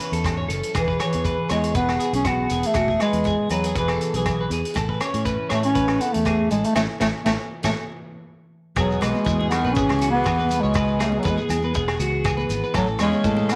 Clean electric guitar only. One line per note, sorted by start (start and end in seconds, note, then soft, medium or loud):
0.00 0.11 B4 medium
0.13 0.37 A4 medium
0.37 0.49 C#5 medium
0.48 0.73 A4 medium
0.75 0.87 G#4 medium
0.88 0.99 B4 medium
1.00 1.24 C#5 medium
1.25 1.49 B4 medium
1.50 1.74 C#5 medium
1.75 1.99 B4 medium
2.00 2.24 G#4 medium
2.25 2.49 F#4 medium
2.52 2.75 G#4 medium
2.76 2.88 F#4 medium
2.90 3.01 G#4 medium
3.02 3.25 B4 medium
3.27 3.50 G#4 medium
3.51 3.64 B4 medium
3.66 3.77 G#4 medium
3.78 3.90 B4 medium
3.91 4.14 A4 medium
4.16 4.39 G#4 medium
4.41 4.51 B4 medium
4.53 4.76 G#4 medium
4.77 4.89 A4 medium
4.90 5.00 B4 medium
5.01 5.25 C#5 medium
5.25 5.49 B4 medium
5.49 5.74 C#5 medium
5.75 5.99 B4 medium
6.00 6.24 A4 medium
6.26 6.50 G#4 medium
6.51 6.75 A4 medium
6.76 6.85 E4 medium
6.76 6.85 A4 medium
6.76 6.84 C#5 medium
7.01 7.10 E4 medium
7.01 7.10 A4 medium
7.01 7.09 C#5 medium
7.26 7.35 E4 medium
7.26 7.35 A4 medium
7.26 7.35 C#5 medium
7.64 7.73 E4 medium
7.64 7.72 A4 medium
7.64 7.72 C#5 medium
8.78 9.01 G#4 medium
9.02 9.25 B4 medium
9.26 9.38 G#4 medium
9.40 9.63 G#4 medium
9.65 9.76 B4 medium
9.77 10.00 G#4 medium
10.02 10.25 F#4 medium
10.26 10.38 G#4 medium
10.38 10.62 B4 medium
10.63 10.75 C#5 medium
10.76 10.99 B4 medium
10.99 11.24 G#4 medium
11.24 11.37 B4 medium
11.37 11.62 G#4 medium
11.64 11.74 B4 medium
11.75 11.99 G#4 medium
12.00 12.24 F#4 medium
12.25 12.37 G#4 medium
12.37 12.61 B4 medium
12.64 12.74 B4 medium
12.75 12.99 A4 medium
13.00 13.24 C#5 medium
13.25 13.36 A4 medium
13.37 13.55 A4 medium